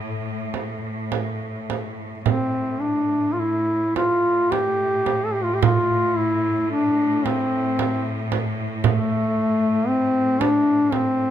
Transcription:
Already playing: cello section A2
0.54 frame drum
1.12 frame drum
1.70 frame drum
2.24 cello section A2, duduk C4, frame drum
2.80 duduk D4
3.33 duduk F4
3.39 duduk E4
3.96 duduk F4, frame drum
4.51 duduk G4, frame drum
5.06 frame drum
5.25 duduk A4
5.33 duduk G4
5.43 duduk F4
5.54 duduk G4
5.63 duduk F4, frame drum
6.17 duduk E4
6.71 duduk D4
7.25 duduk C4, frame drum
7.79 frame drum
8.32 frame drum
8.84 duduk A3, frame drum
9.88 duduk C4
10.41 duduk D4, frame drum
10.92 duduk C4, frame drum

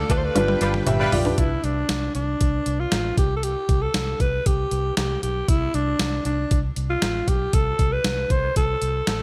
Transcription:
Already playing: grand piano A3 D4 F4 D5, alto saxophone A4, string machine A4 D5 F5 D6
0.10 fingered electric bass D2, clean electric guitar A3 D4 F4 A4, alto saxophone B4, kick, closed hi-hat
0.17 alto saxophone C5
0.23 alto saxophone B4, muted clean electric guitar stroke
0.34 fingered electric bass G1, grand piano G3 D4 F4 B4, string machine B4 G5, muted clean electric guitar stroke, closed hi-hat, high tom, cowbell
0.48 muted clean electric guitar stroke, high tom
0.61 fingered electric bass G1, clean electric guitar G3 D4 F4 B4, horn section G3 F4 B4, closed hi-hat
0.74 muted clean electric guitar stroke, mid tom
0.87 fingered electric bass G1, grand piano G4 E5, muted clean electric guitar stroke, closed hi-hat, mid tom, cowbell
1.00 horn section G3 F4 B4, muted clean electric guitar stroke
1.12 fingered electric bass B1, grand piano F4 D5, alto saxophone G4, floor tom, open hi-hat
1.25 grand piano D4 B4, muted clean electric guitar stroke, floor tom
1.38 fingered electric bass C2, alto saxophone E4, kick, closed hi-hat
1.64 fingered electric bass C2, alto saxophone D4, closed hi-hat
1.89 fingered electric bass C2, snare, closed hi-hat
2.15 fingered electric bass C2, alto saxophone D4, closed hi-hat
2.41 fingered electric bass C2, kick, closed hi-hat
2.66 fingered electric bass C2, closed hi-hat
2.80 alto saxophone F4
2.92 fingered electric bass A1, snare, closed hi-hat
3.17 fingered electric bass C2, alto saxophone G4, kick, closed hi-hat
3.37 alto saxophone A4
3.43 alto saxophone G4, closed hi-hat
3.69 fingered electric bass C2, kick, closed hi-hat
3.82 alto saxophone A4
3.94 fingered electric bass C2, snare, closed hi-hat
4.20 fingered electric bass C2, alto saxophone B4, kick, closed hi-hat
4.46 fingered electric bass C2, alto saxophone G4, kick, closed hi-hat
4.71 fingered electric bass C2, closed hi-hat
4.97 fingered electric bass C2, alto saxophone G4, snare, closed hi-hat
5.23 fingered electric bass B1, alto saxophone G4, closed hi-hat
5.48 fingered electric bass C2, alto saxophone E4, kick, closed hi-hat
5.74 fingered electric bass C2, alto saxophone D4, closed hi-hat
5.99 fingered electric bass C2, snare, closed hi-hat
6.25 fingered electric bass C2, alto saxophone D4, closed hi-hat
6.51 fingered electric bass C2, kick, closed hi-hat
6.76 fingered electric bass C2, closed hi-hat
6.90 alto saxophone F4
7.02 fingered electric bass A1, snare, closed hi-hat
7.28 fingered electric bass B1, alto saxophone G4, kick, closed hi-hat
7.53 fingered electric bass C2, alto saxophone A4, kick, closed hi-hat
7.79 fingered electric bass C2, kick, closed hi-hat
7.93 alto saxophone B4
8.04 fingered electric bass C2, snare, closed hi-hat
8.30 fingered electric bass C2, alto saxophone C5, kick, closed hi-hat
8.56 fingered electric bass C2, alto saxophone A4, kick, closed hi-hat
8.82 fingered electric bass C2, closed hi-hat
9.07 fingered electric bass A1, alto saxophone A4, snare, closed hi-hat

